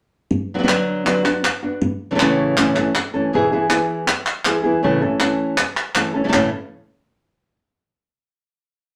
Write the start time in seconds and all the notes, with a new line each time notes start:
0.31 muted nylon-string guitar stroke
0.54 F#3 B3 D4 F#4
0.59 F#3 B3 D4 F#4
0.63 F#3 B3 D4 F#4
0.67 D3 F#3 B3 D4 F#4, clap
1.05 D3 F#3 B3 D4 F#4, clap
1.25 B3 D4 F#4, clap
1.44 muted nylon-string guitar stroke, clap
1.63 B3 D4 F#4
1.82 muted nylon-string guitar stroke
2.11 C#3 E3 A3 C#4 A4
2.15 C#3 E3 A3 C#4 A4
2.19 A2 C#3 E3 A3 C#4 A4, clap
2.57 A2 C#3 E3 A3 C#4 A4, clap
2.76 E3 A3 C#4 A4, clap
2.95 muted nylon-string guitar stroke, clap
3.14 E3 A3 C#4 A4
3.33 G#2 B2 E3 B3 E4 G#4
3.52 E3 B3 E4 G#4
3.70 E3 B3 E4 G#4, clap
4.08 muted nylon-string guitar stroke, clap
4.26 clap
4.44 E3 B3 E4 G#4, clap
4.64 E3 B3 E4 G#4
4.83 A2 C#3 E3 A3 C#4 A4
5.02 E3 A3 C#4 A4
5.20 E3 A3 C#4 A4, clap
5.58 muted nylon-string guitar stroke, clap
5.77 clap
5.95 E3 A3 C#4 A4, clap
6.14 E3 A3 C#4 A4
6.24 C#3 E3 A3 C#4 A4
6.28 C#3 E3 A3 C#4 A4
6.33 A2 C#3 E3 A3 C#4 A4, clap